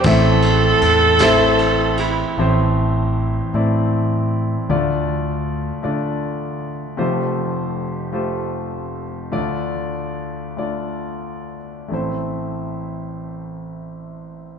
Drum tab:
RD |xxxxxx|------|------|------|
SD |---o--|------|------|------|
BD |o-----|------|------|------|

RD |------|------|
SD |------|------|
BD |------|------|